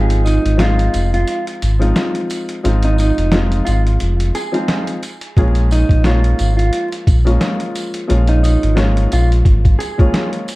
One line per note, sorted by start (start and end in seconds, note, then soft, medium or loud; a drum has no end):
0.00 0.39 G#1 loud
0.00 0.55 F3 medium
0.00 0.55 G#3 medium
0.00 0.55 C4 medium
0.00 0.55 D#4 medium
0.00 0.56 F4 medium
0.00 0.23 G#4 medium
0.10 closed hi-hat medium
0.25 0.56 D#4 medium
0.25 closed hi-hat medium
0.25 tambourine medium
0.45 0.89 G#1 medium
0.45 closed hi-hat medium
0.57 1.69 F3 medium
0.57 1.69 G#3 medium
0.57 1.69 C4 medium
0.57 1.69 D#4 medium
0.57 1.70 F4 loud
0.57 1.10 F4 medium
0.57 snare loud
0.57 snare medium
0.57 closed hi-hat medium
0.79 closed hi-hat medium
0.94 1.24 F1 loud
0.94 closed hi-hat medium
0.94 tambourine medium
1.14 1.44 F4 medium
1.14 closed hi-hat soft
1.28 closed hi-hat loud
1.47 closed hi-hat medium
1.62 1.93 G#1 medium
1.62 closed hi-hat medium
1.62 tambourine medium
1.79 2.57 F3 medium
1.79 2.58 G#3 medium
1.79 2.58 C4 medium
1.79 2.58 D#4 medium
1.79 2.58 F4 loud
1.79 closed hi-hat soft
1.96 snare loud
1.96 snare medium
1.96 closed hi-hat medium
2.15 closed hi-hat medium
2.30 closed hi-hat medium
2.30 tambourine medium
2.49 closed hi-hat medium
2.63 3.12 G#1 loud
2.63 3.27 F3 medium
2.63 3.27 G#3 medium
2.63 3.27 C4 medium
2.63 3.28 D#4 medium
2.63 3.28 F4 loud
2.63 closed hi-hat medium
2.83 2.98 D#4 medium
2.83 closed hi-hat medium
2.98 3.30 D#4 medium
2.98 closed hi-hat medium
2.98 tambourine medium
3.18 3.62 F1 loud
3.18 closed hi-hat medium
3.32 4.43 F3 medium
3.32 4.43 G#3 medium
3.32 4.43 C4 medium
3.32 4.43 D#4 medium
3.32 4.43 F4 loud
3.32 snare loud
3.32 snare medium
3.32 closed hi-hat medium
3.52 closed hi-hat medium
3.65 3.97 G#1 loud
3.65 3.83 F4 medium
3.65 closed hi-hat medium
3.65 tambourine medium
3.87 closed hi-hat soft
4.00 4.31 F1 loud
4.00 closed hi-hat loud
4.20 closed hi-hat medium
4.35 4.84 G#4 medium
4.35 closed hi-hat medium
4.35 tambourine medium
4.52 4.98 F3 medium
4.52 4.99 G#3 medium
4.52 4.99 C4 medium
4.52 4.99 D#4 medium
4.52 4.99 F4 loud
4.52 closed hi-hat soft
4.68 snare loud
4.68 snare medium
4.68 closed hi-hat medium
4.87 closed hi-hat medium
5.03 closed hi-hat medium
5.03 tambourine medium
5.21 closed hi-hat medium
5.37 5.84 A#1 loud
5.37 6.00 F3 medium
5.37 6.00 G#3 medium
5.37 6.01 A#3 medium
5.37 6.01 C#4 medium
5.37 6.01 F4 loud
5.37 5.69 G#4 medium
5.37 kick loud
5.37 closed hi-hat medium
5.55 closed hi-hat medium
5.71 6.02 D#4 medium
5.71 closed hi-hat medium
5.71 tambourine medium
5.89 6.34 A#1 medium
5.89 kick medium
5.89 closed hi-hat medium
6.03 7.15 F3 medium
6.03 7.15 G#3 medium
6.03 7.15 A#3 medium
6.03 7.15 C#4 medium
6.03 7.16 F4 loud
6.03 6.55 F4 medium
6.03 snare loud
6.03 snare medium
6.03 closed hi-hat medium
6.24 closed hi-hat medium
6.39 6.70 G#1 medium
6.39 closed hi-hat medium
6.39 tambourine medium
6.57 6.88 F4 medium
6.57 closed hi-hat soft
6.73 closed hi-hat loud
6.92 closed hi-hat medium
7.07 7.38 A#1 medium
7.07 kick loud
7.07 closed hi-hat medium
7.07 tambourine medium
7.25 8.03 F3 medium
7.25 8.03 G#3 medium
7.25 8.03 A#3 medium
7.25 8.03 C#4 medium
7.25 8.04 F4 loud
7.25 closed hi-hat soft
7.41 snare loud
7.41 snare medium
7.41 closed hi-hat medium
7.60 closed hi-hat medium
7.75 closed hi-hat medium
7.75 tambourine medium
7.94 closed hi-hat medium
8.08 8.57 A#1 loud
8.08 8.72 F3 medium
8.08 8.72 G#3 medium
8.08 8.72 A#3 medium
8.08 8.73 C#4 medium
8.08 8.73 F4 loud
8.08 closed hi-hat medium
8.28 8.42 D#4 medium
8.28 closed hi-hat medium
8.43 8.74 D#4 medium
8.43 closed hi-hat medium
8.43 tambourine medium
8.63 9.07 G#1 loud
8.63 closed hi-hat medium
8.75 9.87 F3 medium
8.75 9.87 G#3 medium
8.75 9.87 A#3 medium
8.75 9.88 C#4 medium
8.75 9.88 F4 loud
8.75 snare loud
8.75 snare medium
8.75 closed hi-hat medium
8.97 closed hi-hat medium
9.12 9.43 A#1 loud
9.12 9.29 F4 medium
9.12 closed hi-hat medium
9.12 tambourine medium
9.32 closed hi-hat soft
9.45 9.76 G#1 loud
9.45 kick loud
9.45 closed hi-hat medium
9.65 kick medium
9.65 closed hi-hat medium
9.79 10.29 G#4 medium
9.79 closed hi-hat medium
9.79 tambourine medium
9.98 10.44 F3 medium
9.98 10.44 G#3 medium
9.98 10.45 A#3 medium
9.98 10.45 C#4 medium
9.98 10.45 F4 loud
9.98 kick loud
9.98 closed hi-hat soft
10.14 snare loud
10.14 snare medium
10.14 closed hi-hat medium
10.33 closed hi-hat medium
10.48 closed hi-hat medium
10.48 tambourine medium